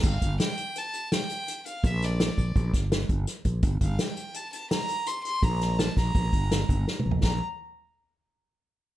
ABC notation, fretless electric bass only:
X:1
M:5/4
L:1/8
Q:1/4=167
K:Gdor
V:1 name="Fretless electric bass" clef=bass
G,,, G,,, z8 | B,,,3 B,,, B,,, G,,,2 G,,, z B,,, | G,,, G,,, z8 | B,,,3 B,,, B,,, G,,,2 G,,, z B,,, |
B,,, z8 z |]